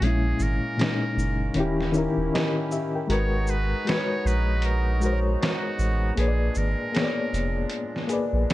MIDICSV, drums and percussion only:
0, 0, Header, 1, 2, 480
1, 0, Start_track
1, 0, Tempo, 769231
1, 9, Time_signature, 4, 2, 24, 8
1, 5326, End_track
2, 0, Start_track
2, 0, Title_t, "Drums"
2, 13, Note_on_c, 9, 42, 85
2, 76, Note_off_c, 9, 42, 0
2, 247, Note_on_c, 9, 82, 48
2, 309, Note_off_c, 9, 82, 0
2, 496, Note_on_c, 9, 42, 64
2, 507, Note_on_c, 9, 38, 108
2, 558, Note_off_c, 9, 42, 0
2, 569, Note_off_c, 9, 38, 0
2, 741, Note_on_c, 9, 82, 47
2, 803, Note_off_c, 9, 82, 0
2, 962, Note_on_c, 9, 42, 73
2, 1024, Note_off_c, 9, 42, 0
2, 1126, Note_on_c, 9, 38, 35
2, 1188, Note_off_c, 9, 38, 0
2, 1209, Note_on_c, 9, 82, 47
2, 1271, Note_off_c, 9, 82, 0
2, 1467, Note_on_c, 9, 42, 75
2, 1470, Note_on_c, 9, 38, 105
2, 1529, Note_off_c, 9, 42, 0
2, 1532, Note_off_c, 9, 38, 0
2, 1693, Note_on_c, 9, 82, 51
2, 1755, Note_off_c, 9, 82, 0
2, 1934, Note_on_c, 9, 42, 96
2, 1996, Note_off_c, 9, 42, 0
2, 2166, Note_on_c, 9, 82, 46
2, 2228, Note_off_c, 9, 82, 0
2, 2416, Note_on_c, 9, 42, 69
2, 2428, Note_on_c, 9, 38, 109
2, 2479, Note_off_c, 9, 42, 0
2, 2490, Note_off_c, 9, 38, 0
2, 2663, Note_on_c, 9, 82, 49
2, 2725, Note_off_c, 9, 82, 0
2, 2883, Note_on_c, 9, 42, 76
2, 2945, Note_off_c, 9, 42, 0
2, 3130, Note_on_c, 9, 82, 50
2, 3192, Note_off_c, 9, 82, 0
2, 3386, Note_on_c, 9, 42, 73
2, 3389, Note_on_c, 9, 38, 108
2, 3449, Note_off_c, 9, 42, 0
2, 3451, Note_off_c, 9, 38, 0
2, 3614, Note_on_c, 9, 82, 51
2, 3676, Note_off_c, 9, 82, 0
2, 3853, Note_on_c, 9, 42, 81
2, 3915, Note_off_c, 9, 42, 0
2, 4086, Note_on_c, 9, 82, 49
2, 4149, Note_off_c, 9, 82, 0
2, 4335, Note_on_c, 9, 42, 62
2, 4346, Note_on_c, 9, 38, 113
2, 4397, Note_off_c, 9, 42, 0
2, 4408, Note_off_c, 9, 38, 0
2, 4582, Note_on_c, 9, 42, 48
2, 4582, Note_on_c, 9, 82, 44
2, 4645, Note_off_c, 9, 42, 0
2, 4645, Note_off_c, 9, 82, 0
2, 4802, Note_on_c, 9, 42, 73
2, 4865, Note_off_c, 9, 42, 0
2, 4966, Note_on_c, 9, 38, 31
2, 5029, Note_off_c, 9, 38, 0
2, 5048, Note_on_c, 9, 42, 47
2, 5048, Note_on_c, 9, 82, 49
2, 5111, Note_off_c, 9, 42, 0
2, 5111, Note_off_c, 9, 82, 0
2, 5304, Note_on_c, 9, 42, 75
2, 5307, Note_on_c, 9, 38, 102
2, 5326, Note_off_c, 9, 38, 0
2, 5326, Note_off_c, 9, 42, 0
2, 5326, End_track
0, 0, End_of_file